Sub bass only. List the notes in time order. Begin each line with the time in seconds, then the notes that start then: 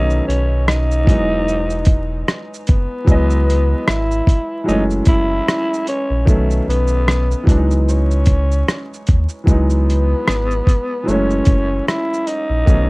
Already playing: B1
0.28 B1
1.08 E1
2.69 F#1
3.08 C#2
3.88 G#1
4.68 F#1
5.07 F#1
6.10 A#1
6.28 B1
6.68 B1
7.48 C#2
9.09 D#2
9.48 C#2
10.28 G#1
11.08 F#1
11.47 F#1
12.50 A#1
12.68 B1